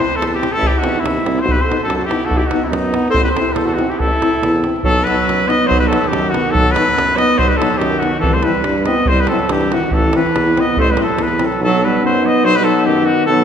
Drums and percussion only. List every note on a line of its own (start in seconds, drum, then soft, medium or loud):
0.22 davul high medium
0.35 davul high soft
0.43 davul high medium
0.56 davul high soft
0.63 davul low medium
0.84 davul high medium
0.96 davul high soft
1.06 davul high medium
1.18 davul high soft
1.26 davul high medium
1.39 davul high soft
1.49 davul low medium
1.63 davul high soft
1.72 davul high medium
1.90 davul high medium
2.01 davul high soft
2.11 davul high medium
2.23 davul high soft
2.31 davul low medium
2.42 davul high soft
2.51 davul high medium
2.73 davul high medium
2.86 davul high soft
2.94 davul high medium
3.08 davul high soft
3.14 davul low medium
3.26 davul high soft
3.37 davul high medium
3.56 davul high medium
3.69 davul high soft
3.79 davul high soft
3.92 davul high soft
4.00 davul low medium
4.13 davul high soft
4.22 davul high medium
4.34 davul high soft
4.43 davul high medium
4.56 davul high soft
4.64 davul high soft
4.76 davul high soft
4.84 davul low medium
5.07 davul high medium
5.20 davul high soft
5.29 davul high medium
5.40 davul high soft
5.50 davul high medium
5.71 davul low medium
5.93 davul high medium
6.04 davul high soft
6.13 davul high medium
6.26 davul high soft
6.34 davul high medium
6.55 davul low loud
6.76 davul high medium
6.88 davul high soft
6.98 davul high medium
7.09 davul high soft
7.18 davul high medium
7.39 davul low medium
7.52 davul high soft
7.62 davul high medium
7.74 davul high soft
7.82 davul high medium
7.92 davul high soft
8.03 davul high medium
8.13 davul high soft
8.23 davul low medium
8.43 davul high medium
8.55 davul high soft
8.64 davul high medium
8.78 davul high soft
8.86 davul high medium
9.06 davul low loud
9.27 davul high medium
9.39 davul high soft
9.49 davul high medium
9.61 davul high soft
9.72 davul high medium
9.91 davul low medium
10.13 davul high medium
10.26 davul high soft
10.36 davul high medium
10.47 davul high soft
10.57 davul high medium
10.77 davul low medium
10.87 davul high soft
10.97 davul high medium
11.08 davul high soft
11.18 davul high medium
11.28 davul high soft
11.39 davul high medium
11.52 davul high soft